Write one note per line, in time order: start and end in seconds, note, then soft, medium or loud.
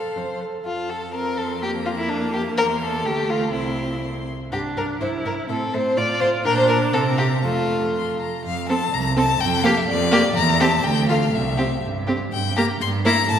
0.00 0.18 A4 soft
0.00 0.41 A4 soft
0.00 0.40 F5 medium
0.16 0.58 F2 soft
0.16 0.43 C5 soft
0.41 0.66 A4 soft
0.65 2.53 F2 soft
0.65 0.91 F4 medium
0.65 1.17 A5 soft
0.90 1.14 A4 medium
1.14 1.64 C4 medium
1.14 1.39 A#4 medium
1.14 1.64 C6 soft
1.38 1.62 A4 medium
1.62 3.07 A#3 medium
1.62 1.70 G4 medium
1.62 2.11 A#5 medium
1.86 1.90 F4 medium
1.98 2.11 E4 medium
2.09 2.33 D4 medium
2.09 2.57 A5 medium
2.33 2.41 G4 medium
2.57 3.06 E2 medium
2.57 2.66 A#4 loud
2.57 3.06 C6 medium
2.82 3.07 A4 medium
3.05 3.53 D2 medium
3.05 3.52 A3 medium
3.05 3.31 G4 medium
3.05 3.30 A5 medium
3.29 3.54 F4 medium
3.29 3.53 A#5 soft
3.53 4.30 C2 soft
3.53 4.26 C4 medium
3.53 4.02 E4 medium
3.53 4.30 C6 soft
4.52 4.60 G2 medium
4.52 4.97 D4 medium
4.52 4.60 G4 medium
4.52 4.60 A#5 soft
4.77 4.85 G2 soft
4.77 4.85 A#4 medium
4.77 4.85 A#5 soft
5.01 5.09 G2 medium
5.01 5.48 E4 medium
5.01 5.09 C5 medium
5.01 5.09 E5 soft
5.25 5.33 G2 medium
5.25 5.34 A#4 medium
5.25 5.33 E5 soft
5.49 5.58 A2 medium
5.49 5.99 C4 medium
5.49 5.76 A4 medium
5.49 5.57 E5 medium
5.74 5.82 A2 medium
5.74 5.99 C5 medium
5.74 5.82 E5 soft
5.97 6.05 A2 medium
5.97 6.46 F4 medium
5.97 6.20 D5 medium
5.97 6.05 F5 medium
6.21 6.29 A2 medium
6.21 6.29 C5 medium
6.21 6.29 F5 medium
6.45 6.90 A#2 medium
6.45 6.95 D4 medium
6.45 6.57 A#4 loud
6.45 6.71 G5 medium
6.58 6.68 C5 loud
6.69 6.77 A#4 medium
6.69 6.95 A5 medium
6.93 7.45 C3 medium
6.93 7.43 C4 medium
6.93 7.01 A4 medium
6.93 7.45 A#5 medium
7.18 7.26 G4 medium
7.43 8.24 F2 medium
7.43 8.18 A3 medium
7.43 8.18 F4 medium
7.43 7.89 A5 medium
7.95 8.18 C6 medium
8.20 8.44 A#5 medium
8.45 8.85 F2 medium
8.45 8.67 F5 medium
8.69 8.80 C4 medium
8.69 8.80 A4 medium
8.69 8.95 A5 loud
8.93 9.32 C2 medium
8.93 9.16 A#5 loud
9.16 9.28 C4 medium
9.16 9.28 A4 medium
9.16 9.42 A5 loud
9.41 9.80 F2 medium
9.41 9.65 G5 loud
9.63 9.75 A#3 medium
9.63 9.76 G4 medium
9.63 9.79 F5 loud
9.77 9.88 E5 medium
9.88 10.28 F2 medium
9.88 10.35 D5 loud
10.11 10.23 A#3 medium
10.11 10.23 G4 medium
10.36 10.76 E2 loud
10.36 10.62 A#5 loud
10.60 10.71 C4 medium
10.60 10.71 G4 medium
10.60 10.85 A5 loud
10.84 11.25 D2 medium
10.84 11.08 G5 loud
11.09 11.20 A3 medium
11.09 11.20 F4 medium
11.09 11.36 F5 medium
11.34 11.75 C2 medium
11.34 11.83 E5 medium
11.57 11.70 C4 medium
11.57 11.69 G4 medium
11.83 12.24 G2 medium
12.07 12.19 C4 medium
12.07 12.19 G4 medium
12.32 12.73 G2 medium
12.32 12.55 G5 medium
12.56 12.68 A#3 medium
12.56 12.68 G4 medium
12.56 12.65 A#5 loud
12.81 13.21 G2 medium
12.81 12.89 C6 loud
13.05 13.16 A#3 medium
13.05 13.16 E4 medium
13.05 13.28 A#5 loud
13.29 13.39 A2 medium
13.29 13.37 A5 loud